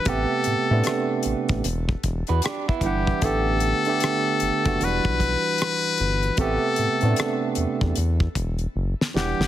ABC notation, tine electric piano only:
X:1
M:4/4
L:1/16
Q:"Swing 16ths" 1/4=76
K:Em
V:1 name="Tine electric piano"
[C,A,B,G]2 z [C,A,B,D]4- [C,A,B,D] z6 [E,G,Df]2 | [D,A,B,G]2 z [D,A,B,G]3 z [D,A,B,F] [E,F,G,DF]6 z2 | [C,A,B,G]2 z [C,A,B,D]4- [C,A,B,D] z6 [E,G,Df]2 |]